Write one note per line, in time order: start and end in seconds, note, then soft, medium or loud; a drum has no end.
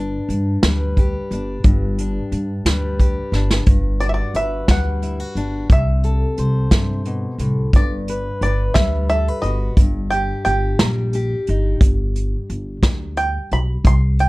0.00 0.14 G1 medium
0.00 1.64 G2 medium
0.00 1.32 D4 soft
0.29 0.55 G2 medium
0.29 closed hi-hat soft
0.63 1.15 D2 medium
0.63 2.65 G3 soft
0.63 2.66 B4 medium
0.63 snare loud
0.63 closed hi-hat medium
0.97 3.00 G4 medium
0.97 kick medium
0.97 closed hi-hat soft
1.31 1.57 G1 medium
1.31 1.99 D4 medium
1.31 closed hi-hat medium
1.64 2.17 G1 loud
1.64 3.66 G2 medium
1.64 kick medium
1.64 closed hi-hat medium
1.98 3.33 D4 medium
1.98 closed hi-hat medium
2.32 2.58 G2 medium
2.32 closed hi-hat medium
2.65 3.18 D2 medium
2.65 4.67 G3 medium
2.65 3.64 B4 soft
2.65 snare loud
2.65 closed hi-hat medium
2.99 3.64 G4 soft
2.99 kick medium
2.99 closed hi-hat soft
3.32 3.59 G1 medium
3.32 3.64 D4 soft
3.32 snare soft
3.51 snare medium
3.66 4.20 G1 medium
3.66 5.70 G2 medium
3.66 kick medium
3.66 closed hi-hat medium
4.00 5.02 F#4 medium
4.00 4.08 D5 medium
4.00 closed hi-hat medium
4.09 4.14 E5 medium
4.14 4.35 D5 medium
4.34 4.61 G1 medium
4.34 5.66 B4 soft
4.34 4.70 E5 medium
4.34 closed hi-hat medium
4.68 5.21 D2 medium
4.68 8.18 G3 medium
4.68 5.72 F#5 medium
4.68 kick medium
4.68 snare medium
4.68 closed hi-hat medium
5.02 5.20 E4 soft
5.02 closed hi-hat soft
5.20 5.70 F#4 soft
5.35 5.62 G1 medium
5.35 5.66 D4 soft
5.35 closed hi-hat soft
5.70 6.23 C2 medium
5.70 6.71 C3 medium
5.70 7.37 E5 medium
5.70 kick medium
5.70 closed hi-hat medium
6.04 7.70 A4 soft
6.04 closed hi-hat medium
6.38 6.64 C2 medium
6.38 7.70 C5 medium
6.38 closed hi-hat medium
6.71 7.24 G2 medium
6.71 7.06 C3 medium
6.71 kick medium
6.71 snare loud
6.71 closed hi-hat medium
7.05 7.39 B2 medium
7.05 closed hi-hat soft
7.38 7.65 C2 medium
7.38 7.74 A2 medium
7.38 closed hi-hat soft
7.73 8.26 G1 medium
7.73 9.79 G2 medium
7.73 8.42 D5 medium
7.73 kick medium
7.73 closed hi-hat medium
8.08 8.42 B4 medium
8.08 closed hi-hat medium
8.41 8.68 G1 medium
8.41 9.10 B4 medium
8.41 8.74 D5 medium
8.41 closed hi-hat medium
8.74 9.28 D2 medium
8.74 10.79 G3 medium
8.74 9.08 E5 medium
8.74 kick medium
8.74 snare loud
8.74 closed hi-hat medium
9.09 9.28 A4 medium
9.09 9.41 E5 medium
9.09 closed hi-hat soft
9.28 9.78 B4 medium
9.42 9.69 G1 medium
9.42 10.06 D#5 medium
9.42 closed hi-hat soft
9.46 9.74 F#4 medium
9.77 10.30 G1 medium
9.77 13.86 G2 medium
9.77 kick medium
9.77 closed hi-hat medium
10.10 10.45 G4 medium
10.10 10.44 G5 medium
10.10 closed hi-hat soft
10.45 10.72 G1 medium
10.45 11.14 G4 medium
10.45 10.80 G5 medium
10.45 closed hi-hat medium
10.79 11.32 A#1 medium
10.79 13.86 G3 medium
10.79 11.52 A#5 medium
10.79 snare loud
10.79 closed hi-hat medium
11.13 11.78 G4 medium
11.13 closed hi-hat soft
11.47 11.74 G1 medium
11.47 11.78 D#4 soft
11.47 closed hi-hat medium
11.81 12.34 G1 medium
11.81 kick loud
11.81 closed hi-hat medium
12.16 closed hi-hat medium
12.50 12.76 G1 medium
12.50 closed hi-hat medium
12.83 13.36 D2 medium
12.83 kick medium
12.83 snare loud
12.83 closed hi-hat medium
13.17 13.49 G5 medium
13.17 closed hi-hat medium
13.51 13.78 B1 medium
13.51 13.86 B5 medium
13.51 closed hi-hat soft
13.84 14.29 C2 medium
13.84 14.20 C6 medium
13.84 kick medium
13.84 closed hi-hat medium
14.19 14.29 G5 medium
14.19 closed hi-hat medium